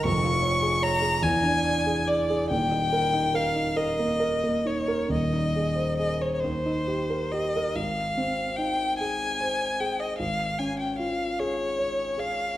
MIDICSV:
0, 0, Header, 1, 3, 480
1, 0, Start_track
1, 0, Key_signature, -4, "major"
1, 0, Tempo, 763359
1, 25, Time_signature, 6, 3, 24, 8
1, 505, Tempo, 845070
1, 1945, Tempo, 882353
1, 4345, Tempo, 804290
1, 7224, End_track
2, 0, Start_track
2, 0, Title_t, "Violin"
2, 0, Program_c, 0, 40
2, 34, Note_on_c, 0, 85, 100
2, 521, Note_on_c, 0, 82, 109
2, 529, Note_off_c, 0, 85, 0
2, 746, Note_on_c, 0, 80, 96
2, 755, Note_off_c, 0, 82, 0
2, 1226, Note_on_c, 0, 74, 85
2, 1234, Note_off_c, 0, 80, 0
2, 1466, Note_off_c, 0, 74, 0
2, 1469, Note_on_c, 0, 79, 97
2, 1951, Note_on_c, 0, 77, 90
2, 1959, Note_off_c, 0, 79, 0
2, 2179, Note_on_c, 0, 75, 88
2, 2187, Note_off_c, 0, 77, 0
2, 2666, Note_on_c, 0, 73, 77
2, 2675, Note_off_c, 0, 75, 0
2, 2909, Note_off_c, 0, 73, 0
2, 2917, Note_on_c, 0, 75, 80
2, 3375, Note_off_c, 0, 75, 0
2, 3378, Note_on_c, 0, 75, 86
2, 3508, Note_on_c, 0, 73, 72
2, 3516, Note_off_c, 0, 75, 0
2, 3574, Note_off_c, 0, 73, 0
2, 3577, Note_on_c, 0, 73, 54
2, 3611, Note_on_c, 0, 72, 78
2, 3619, Note_off_c, 0, 73, 0
2, 4109, Note_on_c, 0, 75, 81
2, 4118, Note_off_c, 0, 72, 0
2, 4350, Note_on_c, 0, 77, 81
2, 4359, Note_off_c, 0, 75, 0
2, 4831, Note_on_c, 0, 79, 89
2, 4840, Note_off_c, 0, 77, 0
2, 5075, Note_off_c, 0, 79, 0
2, 5078, Note_on_c, 0, 80, 92
2, 5569, Note_on_c, 0, 79, 79
2, 5578, Note_off_c, 0, 80, 0
2, 5685, Note_on_c, 0, 75, 76
2, 5694, Note_off_c, 0, 79, 0
2, 5792, Note_off_c, 0, 75, 0
2, 5796, Note_on_c, 0, 77, 86
2, 6038, Note_on_c, 0, 80, 74
2, 6047, Note_off_c, 0, 77, 0
2, 6154, Note_off_c, 0, 80, 0
2, 6160, Note_on_c, 0, 79, 62
2, 6268, Note_off_c, 0, 79, 0
2, 6271, Note_on_c, 0, 77, 79
2, 6518, Note_on_c, 0, 73, 83
2, 6527, Note_off_c, 0, 77, 0
2, 6996, Note_on_c, 0, 77, 87
2, 7005, Note_off_c, 0, 73, 0
2, 7224, Note_off_c, 0, 77, 0
2, 7224, End_track
3, 0, Start_track
3, 0, Title_t, "Grand piano"
3, 0, Program_c, 1, 0
3, 0, Control_c, 1, 64, 127
3, 24, Note_on_c, 1, 29, 66
3, 33, Note_on_c, 1, 41, 70
3, 34, Control_c, 1, 64, 0
3, 114, Control_c, 1, 64, 127
3, 150, Note_on_c, 1, 65, 62
3, 267, Note_on_c, 1, 73, 53
3, 338, Note_off_c, 1, 65, 0
3, 392, Note_on_c, 1, 68, 57
3, 459, Note_off_c, 1, 73, 0
3, 517, Note_on_c, 1, 73, 59
3, 577, Note_off_c, 1, 68, 0
3, 628, Note_on_c, 1, 68, 60
3, 693, Note_off_c, 1, 73, 0
3, 713, Note_off_c, 1, 29, 0
3, 718, Note_off_c, 1, 41, 0
3, 738, Note_off_c, 1, 68, 0
3, 744, Control_c, 1, 64, 0
3, 745, Note_on_c, 1, 40, 77
3, 826, Control_c, 1, 64, 127
3, 859, Note_on_c, 1, 62, 58
3, 982, Note_on_c, 1, 74, 51
3, 1053, Note_off_c, 1, 62, 0
3, 1108, Note_on_c, 1, 68, 55
3, 1178, Note_off_c, 1, 74, 0
3, 1229, Note_on_c, 1, 74, 57
3, 1303, Note_off_c, 1, 68, 0
3, 1355, Note_on_c, 1, 68, 66
3, 1423, Note_off_c, 1, 74, 0
3, 1452, Note_off_c, 1, 40, 0
3, 1472, Note_off_c, 1, 68, 0
3, 1472, Note_on_c, 1, 27, 62
3, 1479, Control_c, 1, 64, 0
3, 1481, Note_on_c, 1, 39, 62
3, 1561, Control_c, 1, 64, 127
3, 1593, Note_on_c, 1, 63, 55
3, 1711, Note_on_c, 1, 70, 52
3, 1780, Note_off_c, 1, 63, 0
3, 1830, Note_on_c, 1, 63, 59
3, 1899, Note_off_c, 1, 70, 0
3, 1947, Note_on_c, 1, 70, 52
3, 2017, Note_off_c, 1, 63, 0
3, 2062, Note_on_c, 1, 63, 60
3, 2132, Note_off_c, 1, 70, 0
3, 2177, Note_on_c, 1, 70, 58
3, 2248, Note_off_c, 1, 63, 0
3, 2300, Note_on_c, 1, 58, 52
3, 2366, Note_off_c, 1, 70, 0
3, 2414, Note_on_c, 1, 70, 55
3, 2490, Note_off_c, 1, 58, 0
3, 2542, Note_on_c, 1, 58, 51
3, 2609, Note_off_c, 1, 70, 0
3, 2660, Note_on_c, 1, 63, 48
3, 2736, Note_off_c, 1, 58, 0
3, 2784, Note_on_c, 1, 70, 52
3, 2857, Note_off_c, 1, 63, 0
3, 2885, Note_off_c, 1, 27, 0
3, 2889, Note_off_c, 1, 39, 0
3, 2897, Note_on_c, 1, 27, 50
3, 2901, Note_on_c, 1, 39, 62
3, 2906, Note_off_c, 1, 70, 0
3, 2917, Control_c, 1, 64, 0
3, 3017, Control_c, 1, 64, 127
3, 3027, Note_on_c, 1, 63, 54
3, 3154, Note_on_c, 1, 68, 49
3, 3216, Note_off_c, 1, 63, 0
3, 3260, Note_on_c, 1, 72, 46
3, 3339, Note_off_c, 1, 68, 0
3, 3389, Note_on_c, 1, 68, 49
3, 3452, Note_off_c, 1, 72, 0
3, 3509, Note_on_c, 1, 72, 49
3, 3577, Note_off_c, 1, 68, 0
3, 3596, Note_off_c, 1, 27, 0
3, 3598, Note_off_c, 1, 39, 0
3, 3625, Note_off_c, 1, 72, 0
3, 3633, Control_c, 1, 64, 0
3, 3634, Note_on_c, 1, 39, 58
3, 3742, Control_c, 1, 64, 127
3, 3751, Note_on_c, 1, 63, 51
3, 3869, Note_on_c, 1, 67, 48
3, 3944, Note_off_c, 1, 63, 0
3, 3991, Note_on_c, 1, 70, 45
3, 4065, Note_off_c, 1, 67, 0
3, 4117, Note_on_c, 1, 67, 50
3, 4186, Note_off_c, 1, 70, 0
3, 4242, Note_on_c, 1, 70, 54
3, 4304, Note_off_c, 1, 67, 0
3, 4332, Note_off_c, 1, 39, 0
3, 4349, Note_on_c, 1, 32, 54
3, 4353, Note_off_c, 1, 70, 0
3, 4358, Control_c, 1, 64, 0
3, 4465, Control_c, 1, 64, 127
3, 4598, Note_on_c, 1, 60, 52
3, 4842, Note_on_c, 1, 63, 47
3, 4983, Note_off_c, 1, 60, 0
3, 5096, Note_on_c, 1, 68, 53
3, 5227, Note_off_c, 1, 63, 0
3, 5333, Note_on_c, 1, 72, 50
3, 5471, Note_off_c, 1, 68, 0
3, 5571, Note_on_c, 1, 68, 51
3, 5705, Note_off_c, 1, 72, 0
3, 5769, Note_off_c, 1, 32, 0
3, 5800, Note_off_c, 1, 68, 0
3, 5805, Control_c, 1, 64, 0
3, 5805, Note_on_c, 1, 32, 55
3, 5900, Control_c, 1, 64, 127
3, 6042, Note_on_c, 1, 61, 52
3, 6281, Note_on_c, 1, 65, 45
3, 6419, Note_off_c, 1, 61, 0
3, 6521, Note_on_c, 1, 68, 56
3, 6659, Note_off_c, 1, 65, 0
3, 6754, Note_on_c, 1, 73, 50
3, 6899, Note_off_c, 1, 68, 0
3, 6986, Note_on_c, 1, 68, 54
3, 7134, Note_off_c, 1, 73, 0
3, 7209, Note_off_c, 1, 32, 0
3, 7224, Note_off_c, 1, 68, 0
3, 7224, End_track
0, 0, End_of_file